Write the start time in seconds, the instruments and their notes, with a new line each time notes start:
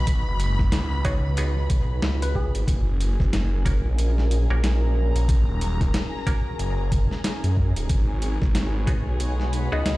Already playing: detuned saw bass B1, ambient pad G#3 F#4 B4, string section B5
0.07 kick, closed hi-hat
0.27 detuned saw bass F#1
0.40 closed hi-hat
0.59 kick, snare
0.72 detuned saw bass C#2, snare, closed hi-hat
1.05 clav B3 D#4 F#4 G#4, synth pluck C#5, kick, closed hi-hat
1.37 clav B3 D#4 F#4 G#4, closed hi-hat
1.70 detuned saw bass B1, kick, closed hi-hat
2.02 detuned saw bass C#2, snare
2.22 synth pluck B4, closed hi-hat
2.35 synth pluck G#4, kick
2.54 detuned saw bass G#1, closed hi-hat
2.67 detuned saw bass F#1, ambient pad F#3 C#4 A#4, string section G#4, kick, closed hi-hat
3.01 closed hi-hat
3.20 detuned saw bass F#1, kick, snare
3.33 snare, closed hi-hat
3.65 clav A#3 C#4 F#4 A#4, kick, closed hi-hat
3.85 detuned saw bass A#1
3.98 closed hi-hat
4.18 snare
4.31 closed hi-hat
4.50 detuned saw bass A#1, clav A#3 C#4 F#4 A#4
4.63 detuned saw bass A#1, snare, closed hi-hat
4.74 string section A#5
5.15 detuned saw bass A#1, closed hi-hat
5.29 kick, closed hi-hat
5.48 detuned saw bass D#1
5.61 closed hi-hat
5.81 kick, snare, closed hi-hat
5.94 snare, closed hi-hat
6.27 clav A#3 C#4 F#4 A#4, kick, closed hi-hat
6.59 detuned saw bass F#1, closed hi-hat
6.92 kick, closed hi-hat
7.11 snare
7.24 snare, closed hi-hat
7.44 detuned saw bass F#2, closed hi-hat
7.57 kick
7.76 detuned saw bass D#1, closed hi-hat
7.89 detuned saw bass G#1, ambient pad G#3 F#4 B4, kick, closed hi-hat
8.04 string section C#5
8.22 closed hi-hat
8.42 detuned saw bass G#1, kick, snare
8.55 snare, closed hi-hat
8.87 clav B3 D#4 F#4 G#4, kick, closed hi-hat
9.07 detuned saw bass B1
9.20 closed hi-hat
9.31 string section F#5
9.40 snare
9.49 string section B5, closed hi-hat
9.72 detuned saw bass C#2, clav B3 D#4 F#4 G#4, synth pluck D#5
9.85 detuned saw bass C#2, synth pluck D#5, snare, closed hi-hat